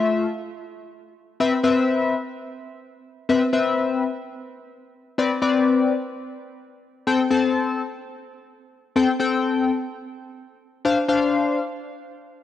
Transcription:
Already playing: A3 F4 E5
1.40 C4 B4 E5
1.63 C4 B4 E5
3.29 C4 B4 E5
3.53 C4 B4 E5
5.18 C4 B4 D5
5.42 C4 B4 D5
7.07 C4 A4 G5
7.30 C4 A4 A5
8.96 C4 A4 G5
9.20 C4 A4 G5
10.85 D4 C5 F5
11.08 D4 C5 F5

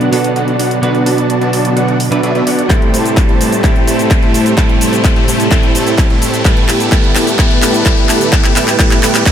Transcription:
Already playing: D3 F#3 B3 F#4 B4, riser
0.01 closed hi-hat
0.11 B1 B2 F#3 B3 D4 F#4 A4 D5 F#5, open hi-hat
0.24 closed hi-hat
0.36 B1 B3 D4 F#4 D5 F#5, closed hi-hat
0.48 closed hi-hat
0.59 B1 B3 D4 F#4 D5 F#5, open hi-hat
0.71 closed hi-hat
0.82 B1 B2 F#3 B3 D4 F#4 B4 D5 F#5, closed hi-hat
0.95 closed hi-hat
1.06 B1 B3 D4 F#4 D5 A5, open hi-hat
1.18 closed hi-hat
1.30 closed hi-hat
1.41 B1 B3 D4 F#4 D5 A5, closed hi-hat
1.53 B1 B3 D4 F#4 D5 A5, open hi-hat
1.65 closed hi-hat
1.76 B1 B3 D4 F#4 D5 F#5, closed hi-hat
1.88 closed hi-hat
2.00 open hi-hat
2.11 B1 B2 F#3 B3 D4 F#4 B4 D5 E5, closed hi-hat
2.22 B1 B2 F#3 B3 D4 F#4 B4 D5 E5, closed hi-hat
2.35 B1 B3 D4 F#4 D5 E5, closed hi-hat
2.47 B1 B3 D4 F#4 D5 F#5, open hi-hat
2.59 closed hi-hat
2.69 A1 A2 C3 G3 A3 C4 E4 G4 A4 C5 G5, kick, clap, closed hi-hat, cabasa
2.82 closed hi-hat
2.93 A1 A3 E4 G4 C5 A5, open hi-hat, cabasa
3.06 closed hi-hat, cabasa
3.17 kick, clap, closed hi-hat, cabasa
3.29 A1 A3 E4 G4 C5 A5, closed hi-hat
3.40 A1 A3 E4 G4 C5 A5, open hi-hat, cabasa
3.52 closed hi-hat, cabasa
3.63 A1 A2 G3 A3 C4 E4 G4 A4 G5, kick, clap, closed hi-hat, cabasa
3.76 closed hi-hat
3.87 A1 A3 E4 G4 C5 A5, open hi-hat, cabasa
3.99 closed hi-hat, cabasa
4.11 kick, clap, closed hi-hat, cabasa
4.22 A1 A3 E4 G4 C5 A5, closed hi-hat
4.34 A1 A3 E4 G4 C5 A5, open hi-hat, cabasa
4.46 closed hi-hat, cabasa
4.56 A1 A2 G3 A3 C4 E4 G4 A4 G5, kick, clap, closed hi-hat, cabasa
4.69 closed hi-hat
4.81 A1 A3 E4 G4 C5 A5, open hi-hat, cabasa
4.93 closed hi-hat, cabasa
5.04 kick, clap, closed hi-hat, cabasa
5.16 A1 A3 E4 G4 C5 A5, closed hi-hat
5.28 A1 A3 E4 G4 C5 A5, open hi-hat, cabasa
5.40 closed hi-hat, cabasa
5.50 A1 A2 G3 A3 C4 E4 G4 A4 C5 G5, kick, clap, closed hi-hat, cabasa
5.63 closed hi-hat
5.75 A1 A3 E4 G4 C5 A5, open hi-hat, cabasa
5.87 closed hi-hat, cabasa
5.98 kick, clap, closed hi-hat, cabasa
6.10 A1 A3 E4 G4 C5 A5, closed hi-hat
6.22 A1 A3 E4 G4 C5 A5, open hi-hat, cabasa
6.34 closed hi-hat, cabasa
6.44 E1 A2 D3 G3 A3 B3 E4 G4 A4, kick, clap, closed hi-hat, cabasa
6.57 closed hi-hat
6.69 E1 A3 E4 G4 B4 A5, clap, open hi-hat, cabasa
6.80 closed hi-hat, cabasa
6.91 A2 G3 A3 B3 E4 A4 B4, kick, clap, closed hi-hat, cabasa
7.04 closed hi-hat
7.15 E1 A3 E4 G4 B4 A5, clap, open hi-hat, cabasa
7.27 closed hi-hat, cabasa
7.38 E1 A2 G3 A3 B3 E4 G4 A4 B4 G5, kick, clap, closed hi-hat, cabasa
7.51 closed hi-hat
7.62 E1 A3 E4 G4 B4 A5, clap, open hi-hat, cabasa
7.74 closed hi-hat, cabasa
7.84 A2 G3 A3 B3 E4 G4 A4 B4 G5, kick, clap, closed hi-hat, cabasa
7.97 closed hi-hat
8.09 E1 A3 E4 G4 B4 A5, clap, open hi-hat, cabasa
8.21 closed hi-hat, cabasa
8.31 A2 G3 A3 B3 E4 G4 A4 B4 G5, kick, clap, closed hi-hat, cabasa
8.44 clap, closed hi-hat
8.55 E1 A2 G3 A3 B3 E4 G4 A4 B4 G5, clap, open hi-hat, cabasa
8.68 clap, closed hi-hat, cabasa
8.78 A2 G3 A3 B3 E4 G4 A4 G5, kick, clap, closed hi-hat, cabasa
8.91 clap, closed hi-hat
9.02 E1 A2 G3 A3 B3 E4 G4 A4 B4 G5, clap, open hi-hat, cabasa
9.15 clap, closed hi-hat, cabasa
9.25 A2 G3 B3 E4 A4, kick, clap, closed hi-hat, reverse cymbal, cabasa

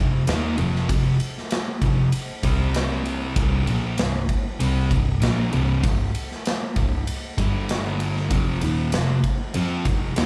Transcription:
Already playing: F1 F2 C3
0.27 D#2 D#3 A#3 D#4, snare, ride
0.58 F1 F2 C3 F3, ride
0.76 snare
0.89 F1 F2 C3, kick, ride
1.20 ride
1.38 snare
1.51 snare, ride
1.82 F1 F2 C3, kick, ride
2.12 ride
2.43 C2 C3 G3 C4, kick, ride
2.75 snare, ride
3.06 ride
3.35 C2 G2 C3, kick, ride
3.66 A#1 A#2 F3 A#3, ride
3.98 C2 G2, snare, ride
4.29 kick, ride
4.59 C2 C3 G3 C4, ride
4.90 C2 G2, kick, ride
5.20 A#1 A#2 F3 A#3, snare, ride
5.52 C2 G2 C3, ride
5.84 C2 G2, kick, ride
6.15 ride
6.32 snare
6.45 snare, ride
6.76 C2 G2, kick, ride
7.07 ride
7.38 G1 G2 D3 G3, kick, ride
7.69 snare, ride
8.00 ride
8.17 snare
8.30 F1 F2 C3 F3, kick, ride
8.61 D#2 A#2 D#3, ride
8.92 F1 F2 C3, snare, ride
9.24 kick, ride
9.54 F2 F3 C4 F4, ride
9.85 F1 F2 C3, kick, ride
10.16 D#2 D#3 A#3 D#4, snare, ride

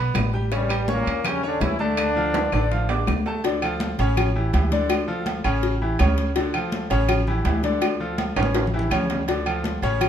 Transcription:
Already playing: B1 B3 B4 B5
0.14 A1, high bongo, low bongo, high conga, high timbale, low timbale, claves
0.33 G3 G4 G5, high bongo, high conga
0.51 G2 C#3 G3 C#4 C#5, high bongo, high conga, high timbale
0.70 G3 G4 G5, high conga, high timbale, claves
0.88 A#2 A#3 C#4 C#5 C#6, high bongo, high conga, low timbale
1.06 E2, high bongo, high conga, high timbale
1.24 C#3 G3 C#4 G4 G5, high bongo, high conga, low conga, high timbale, claves
1.43 D3 C#4 D4 C#5 C#6, high bongo, high conga
1.61 D2 E3 E4, high bongo, low bongo, high conga, high timbale, low timbale
1.79 D3 A3 D4 A4 A5, high bongo, high conga
1.97 high bongo, high conga, high timbale, claves
2.16 F3 F4 F5, high conga
2.34 high bongo, high conga, high timbale
2.52 A1 D3 D4 D5, high bongo, high timbale, claves
2.71 F3 F4 F5, high bongo, high conga
2.89 D4 D5 D6, high bongo, high conga, low timbale
3.07 D2, high bongo, low bongo, high conga, low timbale, claves
3.25 A3 A4 A5, high bongo, high conga, low timbale
3.44 D3 D4 D5, cowbell, high conga, low agogo
3.62 F3 F4 A4, high conga, low agogo, claves
3.80 cowbell, high conga, low timbale
3.99 A1 C#3 C#4 C#5, cowbell, low agogo
4.17 cowbell, high conga, low conga, low agogo, claves
4.35 E3 E4 G4, high conga
4.53 D2 E3 E4 G4, cowbell, high conga, low timbale, low agogo
4.72 D3 D4 D5, cowbell, high conga
4.90 cowbell, high conga, low agogo, claves
5.08 F3 F4 A4, high conga
5.26 cowbell, high conga, low timbale, low agogo
5.44 A1 C#3 C#4 C#5, low agogo, claves
5.63 cowbell, high conga
5.81 E3 E4 G4, high conga
5.99 D2 C#3 C#4 C#5, cowbell, high conga, low timbale, low agogo, claves
6.18 cowbell, high conga
6.36 D3 D4 D5, cowbell, high conga, low agogo
6.54 F3 F4 A4, high conga, low agogo, claves
6.72 cowbell, high conga, low timbale
6.90 A1 C#3 C#4 C#5, cowbell, high conga, low agogo
7.09 cowbell, high conga, low conga, low agogo, claves
7.27 E3 E4 G4, high conga, low conga
7.45 D2 E3 E4 G4, cowbell, high conga, low timbale, low agogo
7.63 D3 D4 D5, cowbell, high conga
7.82 cowbell, high conga, low agogo, claves
8.00 F3 F4 A4, high conga
8.18 cowbell, high conga, low timbale, low agogo
8.36 A1 C#3 C#4 C#5, high timbale, low agogo, claves
8.43 high conga
8.55 cowbell, high timbale
8.67 low conga
8.73 E3 E4 G4
8.79 low conga
8.90 D2 C#3 C#4 C#5, cowbell, low conga, low timbale, low agogo, claves
9.03 low conga
9.10 cowbell, low timbale
9.15 low conga
9.27 D3 D4 D5, cowbell, high conga, low agogo
9.46 F3 F4 A4, high conga, low agogo, claves
9.64 cowbell, high conga, low timbale
9.82 A1 C#3 C#4 C#5, cowbell, high conga, low agogo
10.01 cowbell, high conga, low conga, low agogo, claves

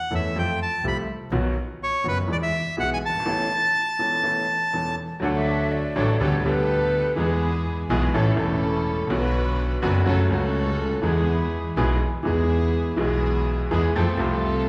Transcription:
Already playing: F#5
0.10 E2 E3 A3 C#4 A4
0.15 E5
0.35 F2 F3 A3 C4 A4 G5
0.63 A5
0.83 C2 C3 F3 A3 C4 A4
0.88 B5
1.31 B1 B2 D#3 F#3 B3 F#4
1.83 C#5
2.04 F#1 F#2 D#3 F#3 B3 F#4
2.08 B4
2.28 E2 E3 G#3 B3 G#4
2.32 D5
2.43 E5
2.77 B1 B2 E3 G#3 B3 G#4 F#5
2.94 G#5
3.06 F#1 A5
3.14 G1
3.19 G#1
3.25 A1 A2 E3 B3 C#4 A4
3.99 E1 E2 E3 B3 C#4 A4
4.23 A1 A2 E3 B3 C#4 A4
4.73 E1 E2 E3 B3 C#4 A4
5.20 D2 D3 F#3 A3 D4 F#4 F#5
5.24 A4
5.36 E5
5.72 D5
5.96 A1 A2 F#3 A3 D4 F#4 A4
6.20 D2 D3 G3 B3 D4 G4 A4 C#5
6.44 D2 D3 G3 B3 D4 G4 A4 B4
7.16 E2 E3 G#3 B3 E4 G#4
7.89 B1 B2 E3 G#3 B3 E4 G#4
8.13 A1 A2 E3 A3 C#4 E4 A4
8.35 E1 E2 E3 A3 C#4 A4
8.39 C#4 E4 A4
9.07 B1 B2 D3 F#3 B3 D4 F#4
9.11 F#4 B4
9.82 F#1 F#2 D3 F#3 B3 D4 F#4 B4
10.06 F#1 F#2 C#3 F#3 A3 C#4 F#4 A4
10.29 C#2 C#3 F#3 A3 C#4 F#4 A4
10.33 F#4
11.02 E2 E3 G#3 B3 E4 G#4
11.76 B1 B2 E3 G#3 B3 E4 G#4
12.23 E2 E3 G#3 B3 E4 G#4
12.96 B1 B2 E3 G#3 B3 E4 G#4
13.71 E2 E3 G#3 B3 E4 G#4
13.95 F2 F3 A3 C4 F4 A4
14.17 C2 C3 F3 A3 C4 F4 A4
14.22 A4

